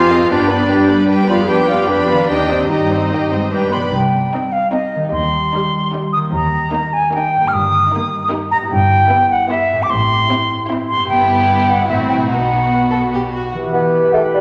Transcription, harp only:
Already playing: F2 C4 D#4 G#4
0.13 G2
0.17 B3
0.22 D4
0.26 G4
1.31 F2
1.35 B3
1.39 D4
1.44 G4
2.11 D#3
2.15 C4
2.20 D#4
2.25 G4
2.52 G2
2.57 C4
2.62 D#4
2.66 G4
3.34 G2
3.39 B3
3.44 D4
3.48 G4
3.75 C3
3.80 G3
3.85 D#4
3.89 G4
4.95 D#3
5.00 G3
5.04 D#4
5.09 G4
6.16 D#3 A#3
6.25 D#4
6.29 G4
7.36 G2
7.40 A#3
7.45 D#4
7.49 G4
8.54 G2
8.58 B3
8.63 E4
8.68 G4
9.73 A2
9.77 C4
9.81 E4
9.86 G4
10.91 G2
10.96 B3
11.00 E4
11.05 G4
11.71 A2
11.76 C4
11.80 E4
11.85 F#4
12.12 B2
12.17 B3
12.22 D#4
12.26 F#4
13.53 E3
13.64 B3
13.74 E4
13.84 G4
13.95 B4
14.04 E5
14.15 G5
14.24 B5
14.34 G5

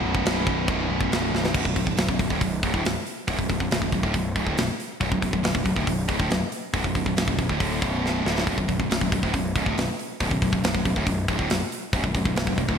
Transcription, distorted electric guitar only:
Already playing: B1 F#2 B2
0.67 B1 F#2 B2
1.55 B1 F#2
1.65 B1 F#2
1.76 B1 F#2
1.86 B1 F#2
1.97 B1 F#2
2.09 B1 F#2
2.20 B1 F#2
2.31 D2 A2
2.42 B1 F#2
2.63 C#2 G#2
2.73 D2 A2
2.84 B1 F#2
3.28 B1 F#2
3.38 B1 F#2
3.49 B1 F#2
3.61 B1 F#2
3.72 B1 F#2
3.83 B1 F#2
3.94 B1 F#2
4.03 D2 A2
4.15 B1 F#2
4.36 C#2 G#2
4.47 D2 A2
4.58 B1 F#2
5.00 B1 F#2
5.11 B1 F#2
5.21 B1 F#2
5.33 B1 F#2
5.43 B1 F#2
5.54 B1 F#2
5.65 B1 F#2
5.76 D2 A2
5.88 B1 F#2
6.08 C#2 G#2
6.19 D2 A2
6.31 B1 F#2
6.74 B1 F#2
6.85 B1 F#2
6.96 B1 F#2
7.07 B1 F#2
7.16 B1 F#2
7.28 B1 F#2
7.39 B1 F#2
7.50 D2 A2
7.60 D2 A2 D3
7.81 B1 F#2 B2
8.25 D2 A2 D3
8.47 B1 F#2
8.58 B1 F#2
8.68 B1 F#2
8.80 B1 F#2
8.90 B1 F#2
9.02 B1 F#2
9.13 B1 F#2
9.24 D2 A2
9.34 B1 F#2
9.56 C#2 G#2
9.66 D2 A2
9.78 B1 F#2
10.21 B1 F#2
10.32 B1 F#2
10.42 B1 F#2
10.52 B1 F#2
10.64 B1 F#2
10.75 B1 F#2
10.86 B1 F#2
10.96 D2 A2
11.06 B1 F#2
11.28 C#2 G#2
11.39 D2 A2
11.51 B1 F#2
11.94 B1 F#2
12.05 B1 F#2
12.16 B1 F#2
12.26 B1 F#2
12.37 B1 F#2
12.48 B1 F#2
12.58 B1 F#2
12.68 D2 A2

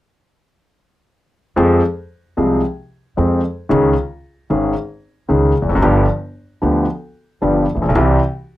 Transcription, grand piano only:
1.56 F2 F3 G#3 C4 G#4
2.37 C2 C3 F3 G#3 C4 G#4
3.17 F2 F3 G#3 C4 G#4
3.69 C#2 C#3 D#3 G#3 C#4 G#4
4.50 G#1 G#2 D#3 G#3 C#4 G#4
5.29 C#2 C#3 D#3 G#3 C#4 G#4
5.62 E2
5.69 F2
5.75 F#2
5.82 G1 G2 F3 B3 D4 G4
6.62 D2 D3 F3 B3 D4 G4
7.42 G1 G2 F3 B3 D4 G4
7.75 A1
7.82 A#1
7.89 B1
7.95 C2 C3 E3 G3 C4 G4

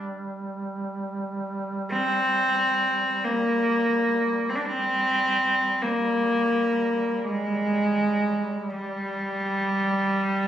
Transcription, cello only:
1.92 C4
3.24 A#3
4.49 C4
4.56 D4
4.65 C4
5.82 A#3
7.25 G#3
8.70 G3

